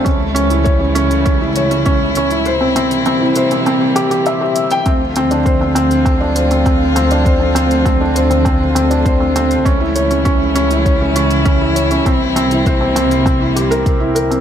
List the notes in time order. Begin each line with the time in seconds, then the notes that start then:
Already playing: A3
0.04 C#2 C#3 E3 G3 C#4 E4, kick, closed hi-hat
0.35 C#4, closed hi-hat
0.50 E4, closed hi-hat
0.64 C#5, kick, closed hi-hat
0.80 C#4
0.95 C#4, closed hi-hat
1.11 closed hi-hat
1.25 C#4, kick, closed hi-hat
1.41 E4
1.56 C#5, closed hi-hat
1.71 C#4, closed hi-hat
1.86 C#4, kick, closed hi-hat
2.15 C#4, closed hi-hat
2.31 E4, closed hi-hat
2.45 C3 E3 G3 A#3 C5, closed hi-hat
2.61 C4
2.76 C4, closed hi-hat
2.91 closed hi-hat
3.06 C4, closed hi-hat
3.21 E4
3.36 C5, closed hi-hat
3.51 C4, closed hi-hat
3.66 C4, closed hi-hat
3.96 G4, closed hi-hat
4.11 G4, closed hi-hat
4.26 E5, closed hi-hat
4.41 G4
4.56 closed hi-hat
4.71 G5, closed hi-hat
4.86 D2 D3 F3 A3 C4 F4, kick, closed hi-hat
5.16 C4, closed hi-hat
5.31 D4, closed hi-hat
5.45 C5, kick, closed hi-hat
5.61 C4
5.75 C4, closed hi-hat
5.91 closed hi-hat
6.05 C4, kick, closed hi-hat
6.21 D4
6.36 C5, closed hi-hat
6.51 C4, closed hi-hat
6.66 C4, kick, closed hi-hat
6.96 C4, closed hi-hat
7.11 D4, closed hi-hat
7.25 C5, kick, closed hi-hat
7.40 C4
7.55 C4, closed hi-hat
7.71 closed hi-hat
7.85 C4, kick, closed hi-hat
8.01 D4
8.15 C5, closed hi-hat
8.30 C4, closed hi-hat
8.45 C4, kick, closed hi-hat
8.75 C4, closed hi-hat
8.90 D4, closed hi-hat
9.05 C5, kick, closed hi-hat
9.20 C4
9.36 C4, closed hi-hat
9.51 closed hi-hat
9.65 C#2 C#3 E3 G3 C#4 E4, kick, closed hi-hat
9.80 E4
9.96 C#5, closed hi-hat
10.10 C#4, closed hi-hat
10.25 C#4, kick, closed hi-hat
10.55 C#4, closed hi-hat
10.70 E4, closed hi-hat
10.86 C#5, kick, closed hi-hat
11.01 C#4
11.16 C#4, closed hi-hat
11.31 closed hi-hat
11.46 C#4, kick, closed hi-hat
11.61 E4
11.76 C#5, closed hi-hat
11.91 C#4, closed hi-hat
12.05 C2 C3 A#3 C4, kick, closed hi-hat
12.36 C4, closed hi-hat
12.51 E4, closed hi-hat
12.66 C5, kick, closed hi-hat
12.81 C4
12.96 C4, closed hi-hat
13.11 closed hi-hat
13.26 C4, kick, closed hi-hat
13.41 E4
13.56 G4, closed hi-hat
13.71 A#4, closed hi-hat
13.86 kick, closed hi-hat
14.00 E4
14.15 A#4, closed hi-hat
14.31 C4, closed hi-hat